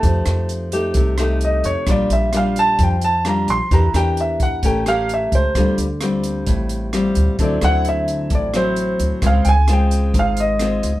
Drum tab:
HH |xxxxxxxx|xxxxxxxx|xxxxxxxx|xxxxxxxx|
SD |-r---r--|r-r---r-|-r---r--|r-r---r-|
BD |o---o---|o---o---|o--oo--o|o---o---|

HH |xxxxxxxx|xxxxxxxx|
SD |-r---r--|r-r---r-|
BD |o---o---|o---o---|